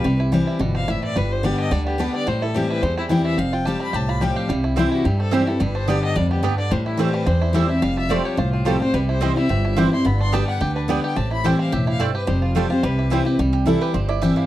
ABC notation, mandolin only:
X:1
M:4/4
L:1/8
Q:"Swing" 1/4=216
K:C
V:1 name="Mandolin"
z8 | z8 | z8 | z8 |
z2 [CEcg] z3 [CEcg] z | z2 [B,Gdg] z3 [B,Gdg] z | z2 [A,Ecg] z3 [A,Ecg] z | z2 [A,Fcg] z3 [A,Fcg] z |
z2 [CEcg] z3 [CEcg] z | z2 [B,Gdg] z3 [B,Gdg] z | z2 [A,Ecg] z3 [A,Ecg] z | z2 [A,Fcg] z3 [CEcg] z |
z G A B c d e f |]